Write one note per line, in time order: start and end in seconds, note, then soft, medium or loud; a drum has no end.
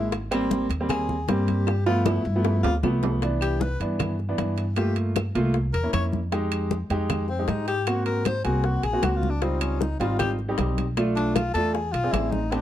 0.00 0.64 G#1 medium
0.00 0.12 G#3 medium
0.00 0.12 A#3 medium
0.00 0.11 E4 medium
0.00 0.12 E4 medium
0.12 high bongo medium
0.12 high conga soft
0.12 high timbale medium
0.31 0.65 G3 loud
0.31 0.65 A#3 loud
0.31 0.66 C4 loud
0.31 high conga soft
0.31 high timbale loud
0.31 claves medium
0.51 high bongo medium
0.51 high conga medium
0.69 1.24 D#2 loud
0.69 high bongo soft
0.69 high conga soft
0.69 high timbale medium
0.80 1.14 G3 medium
0.80 1.14 A#3 medium
0.80 1.14 C4 medium
0.89 1.31 G#4 loud
0.89 high bongo medium
0.89 high conga soft
0.89 low conga medium
0.89 high timbale medium
0.89 claves medium
1.09 high bongo soft
1.09 high conga soft
1.09 low conga medium
1.28 2.19 G2 medium
1.28 1.68 G3 medium
1.28 1.68 A#3 medium
1.28 1.68 C4 medium
1.28 1.86 G4 medium
1.28 high bongo medium
1.28 low bongo medium
1.28 high conga medium
1.28 high timbale medium
1.48 high bongo soft
1.48 high conga medium
1.48 high timbale medium
1.67 high bongo medium
1.67 high conga soft
1.67 high timbale medium
1.67 claves medium
1.86 2.20 F3 medium
1.86 2.21 A3 medium
1.86 2.20 B3 medium
1.86 2.07 F4 loud
1.86 high conga soft
1.86 high timbale loud
2.06 2.63 E4 medium
2.06 high bongo medium
2.06 high conga loud
2.06 high timbale loud
2.06 claves medium
2.25 2.61 G2 loud
2.25 high bongo soft
2.36 2.69 F3 medium
2.36 2.69 A3 medium
2.36 2.69 B3 medium
2.45 high bongo loud
2.45 high conga soft
2.45 low timbale medium
2.63 2.82 D2 medium
2.63 2.75 F4 loud
2.63 high conga soft
2.63 low timbale loud
2.83 3.74 C2 medium
2.83 3.22 F3 medium
2.83 3.23 A3 medium
2.83 3.21 B3 medium
2.83 low bongo medium
2.83 high conga medium
2.83 low timbale medium
2.83 claves medium
3.03 low bongo medium
3.03 high conga medium
3.03 low timbale medium
3.22 3.63 E3 medium
3.22 3.63 B3 medium
3.22 3.63 D4 loud
3.22 high bongo medium
3.22 high conga soft
3.22 high timbale medium
3.41 3.63 G4 medium
3.41 high conga soft
3.41 high timbale medium
3.41 claves medium
3.61 3.80 B4 loud
3.61 high bongo medium
3.61 high conga medium
3.80 4.34 G2 medium
3.80 4.14 E3 medium
3.80 4.14 B3 medium
3.80 4.14 D4 medium
3.80 high bongo soft
3.80 high conga soft
3.80 high timbale medium
3.99 high bongo medium
3.99 high conga soft
3.99 low conga medium
3.99 high timbale medium
3.99 claves medium
4.19 high bongo soft
4.19 high conga soft
4.29 4.63 E3 medium
4.29 4.63 B3 medium
4.29 4.63 D4 medium
4.38 5.29 G2 medium
4.38 high bongo medium
4.38 low bongo medium
4.38 high conga medium
4.38 high timbale medium
4.57 4.73 E4 medium
4.57 high bongo soft
4.57 high timbale medium
4.76 5.18 A3 medium
4.76 5.17 A#3 medium
4.76 5.18 F4 medium
4.76 4.96 G4 medium
4.76 high bongo medium
4.76 high conga soft
4.76 high timbale medium
4.76 claves medium
4.96 high conga soft
4.96 high timbale medium
5.16 high bongo medium
5.16 high conga loud
5.16 high timbale medium
5.16 claves medium
5.35 5.71 C2 medium
5.35 5.55 A3 medium
5.35 5.55 A#3 medium
5.35 5.55 F4 loud
5.35 high bongo soft
5.35 high timbale medium
5.54 high bongo medium
5.54 high conga soft
5.73 5.92 E2 medium
5.73 5.92 A#4 loud
5.73 high bongo soft
5.73 high conga soft
5.73 high timbale medium
5.83 6.18 A#3 medium
5.83 6.17 C#4 medium
5.83 6.18 E4 medium
5.93 6.84 F2 medium
5.93 6.05 C#5 loud
5.93 high bongo medium
5.93 low bongo medium
5.93 high conga medium
5.93 high timbale loud
5.93 claves medium
6.12 high bongo soft
6.12 high conga medium
6.32 6.73 G#3 medium
6.32 6.73 D#4 medium
6.32 6.73 G4 medium
6.32 high bongo medium
6.32 high conga soft
6.32 high timbale medium
6.52 high conga soft
6.52 high timbale loud
6.52 claves medium
6.71 high bongo medium
6.71 high conga medium
6.90 7.44 F2 medium
6.90 7.24 G#3 medium
6.90 7.24 D#4 medium
6.90 7.25 G4 loud
6.90 high bongo soft
6.90 high conga soft
6.90 high timbale medium
7.10 high bongo medium
7.10 high conga soft
7.10 low conga medium
7.10 high timbale medium
7.10 claves medium
7.29 7.49 C4 loud
7.29 high bongo soft
7.29 high conga soft
7.39 7.73 G#3 medium
7.39 7.73 D#4 medium
7.39 7.73 G4 medium
7.48 8.39 G#2 medium
7.48 7.67 D#4 medium
7.48 high bongo medium
7.48 low bongo medium
7.48 high conga medium
7.48 high timbale medium
7.68 7.90 G4 loud
7.68 high bongo soft
7.68 high timbale medium
7.87 8.28 A#3 medium
7.87 8.28 C4 medium
7.87 8.28 F#4 medium
7.87 8.05 F#4 loud
7.87 high bongo medium
7.87 high conga soft
7.87 high timbale loud
7.87 claves medium
8.05 8.27 A#4 loud
8.05 high conga soft
8.05 high timbale medium
8.25 8.44 C5 loud
8.25 high bongo medium
8.25 high conga loud
8.25 high timbale medium
8.25 claves medium
8.44 8.81 C2 loud
8.44 8.79 A#3 medium
8.44 8.79 C4 medium
8.44 8.79 F#4 medium
8.44 8.67 G#4 medium
8.44 high bongo soft
8.44 high timbale medium
8.64 8.85 F#4 medium
8.64 high bongo medium
8.64 high conga soft
8.83 9.02 A#1 medium
8.83 9.06 G#4 loud
8.83 high bongo soft
8.83 high conga soft
8.83 high timbale medium
8.93 9.27 A#3 medium
8.93 9.27 C4 medium
8.93 9.27 F#4 medium
9.02 9.94 C#2 medium
9.02 9.18 F#4 medium
9.02 high bongo medium
9.02 low bongo medium
9.02 high conga medium
9.02 high timbale medium
9.02 low timbale medium
9.02 claves medium
9.16 9.31 F4 medium
9.22 high bongo soft
9.22 high conga medium
9.30 9.43 D4 medium
9.42 9.83 G3 medium
9.42 9.62 C4 medium
9.42 9.83 C4 medium
9.42 9.83 D#4 medium
9.42 9.83 F4 medium
9.42 high bongo medium
9.42 high conga soft
9.42 high timbale medium
9.61 9.82 C#4 medium
9.61 high conga soft
9.61 high timbale loud
9.61 claves medium
9.80 9.99 D#4 medium
9.80 high bongo medium
9.80 high conga loud
9.99 10.54 G#1 medium
9.99 10.34 G3 medium
9.99 10.34 C4 medium
9.99 10.34 D#4 medium
9.99 10.18 F4 medium
9.99 10.34 F4 medium
9.99 high bongo soft
9.99 high conga soft
9.99 high timbale medium
10.19 10.31 G4 loud
10.19 high bongo medium
10.19 high conga soft
10.19 low conga medium
10.19 high timbale medium
10.19 claves medium
10.39 high bongo soft
10.39 high conga soft
10.48 10.83 G3 medium
10.48 10.83 C4 medium
10.48 10.83 D#4 medium
10.48 10.83 G4 medium
10.58 11.49 B1 medium
10.58 high bongo medium
10.58 low bongo medium
10.58 high conga medium
10.58 high timbale medium
10.58 low timbale medium
10.78 high bongo soft
10.78 high conga medium
10.78 high timbale medium
10.97 11.38 A3 medium
10.97 11.38 D4 medium
10.97 11.38 F4 medium
10.97 high bongo medium
10.97 high conga soft
10.97 high timbale medium
10.97 claves medium
11.16 11.37 D4 loud
11.16 high conga soft
11.16 high timbale medium
11.35 11.53 F4 loud
11.35 high bongo medium
11.35 high conga loud
11.35 high timbale medium
11.35 claves medium
11.54 11.91 E2 medium
11.54 11.75 A3 medium
11.54 11.75 D4 medium
11.54 11.75 F4 medium
11.54 11.75 A4 loud
11.54 high bongo soft
11.54 high timbale medium
11.73 11.93 G#4 loud
11.73 high bongo medium
11.73 high conga soft
11.92 12.12 B1 medium
11.92 12.14 F4 loud
11.92 high bongo soft
11.92 high conga soft
11.92 high timbale medium
12.04 12.38 C4 medium
12.04 12.38 D4 medium
12.04 12.38 G#4 medium
12.12 12.61 A1 medium
12.12 12.33 E4 loud
12.12 high bongo medium
12.12 low bongo medium
12.12 high conga medium
12.12 high timbale loud
12.12 low timbale medium
12.12 claves medium
12.32 12.53 D#4 medium
12.32 high bongo soft
12.32 high conga medium
12.51 12.61 B3 medium
12.51 12.61 C4 medium
12.51 12.61 D4 medium
12.51 12.61 G4 medium
12.51 high bongo medium
12.51 high conga soft
12.51 high timbale medium